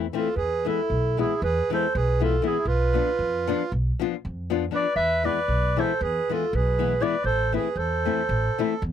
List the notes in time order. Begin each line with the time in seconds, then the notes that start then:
0.13 E3 A3 C4 E4 F4 A4
0.36 E2 G#4 B4
0.65 E3 G#3 B3 E4 A4
0.90 B1
1.17 E3 G#3 B3 E4 G#4
1.42 E2 G#4 B4
1.70 E3 G#3 B3 E4 A4 C5
1.95 B1 G#4 B4
2.20 E3 G#3 B3 E4 F4 A4
2.42 E3 G#3 B3 E4
2.47 G#4
2.65 B1 F4 B4
2.93 F3 B3 D4 F4
3.19 F2
3.47 F3 B3 D4 F4
3.72 B1
3.99 F3 B3 D4 F4
4.25 F2
4.50 F3 B3 D4 F4
4.71 F3 B3 D4 F4 B4
4.75 D5
4.96 E2 B4 E5
5.23 E3 G#3 B3 E4 B4 D5
5.48 B1
5.77 E3 G#3 B3 E4 A4 C5
6.01 E2 G#4 B4
6.29 E3 G#3 B3 E4 F4 A4
6.53 B1 G#4 B4
6.79 E3 G#3 B3 E4
7.01 E3 G#3 B3 E4 B4 D5
7.24 A1 A4 C5
7.52 E3 A3 C4 E4 G#4 B4
7.76 E2 A4 C5
8.05 E3 A3 C4 E4
8.29 A1
8.58 E3 A3 C4 E4
8.82 E2